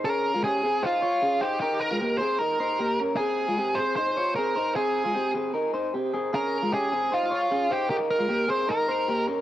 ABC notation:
X:1
M:4/4
L:1/16
Q:1/4=153
K:Dblyd
V:1 name="Lead electric guitar"
B4 A4 F6 G2 | G2 B4 c2 B6 z2 | A6 c2 c4 B4 | A6 z8 z2 |
B4 A4 F6 G2 | G2 B4 c2 B6 z2 |]
V:2 name="Clean electric guitar"
[DA]3 [A,F] [DG]2 [CA]2 [Ec]2 [Fd]2 [DA]2 [Ec]2 | [EB]3 [A,F] [B,G]2 [CA]2 [EB]2 [Ec]2 [B,G]2 [DB]2 | [CA]3 [A,F] [CG]2 [CA]2 [Ec]2 [Fd]2 [CA]2 [Ec]2 | [CA]3 [A,F] [CG]2 [CA]2 [EB]2 [Ec]2 [CG]2 [CA]2 |
[DA]3 [A,F] [DG]2 [CA]2 [Ec]2 [Fd]2 [DA]2 [Ec]2 | [EB]3 [A,F] [B,G]2 [CA]2 [EB]2 [Ec]2 [B,G]2 [DB]2 |]